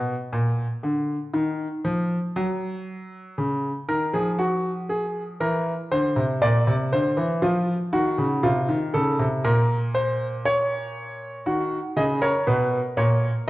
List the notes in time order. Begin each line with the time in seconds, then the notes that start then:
Already playing: B2
0.33 A#2
0.83 D3
1.34 D#3
1.84 F3
2.36 F#3
3.38 C#3
3.89 D#3 A#4
4.13 F3 G#4
4.38 F#4
4.89 G#4
5.40 E3 A#4
5.92 D3 C5
6.16 C3
6.42 A#2 D5
6.67 C3
6.92 D3 C5
7.17 E3
7.42 F3 F4
7.93 D#3 F#4
8.18 C#3
8.43 C3 F4
8.69 D#3
8.94 C#3 A4
9.19 C3
9.44 A#2 A#4
9.94 C5
10.45 C#5
11.46 D#3 F#4
11.96 C#3 G#4 D#5
12.22 A#4 C#5
12.47 B2 B4
12.97 A#2 C#5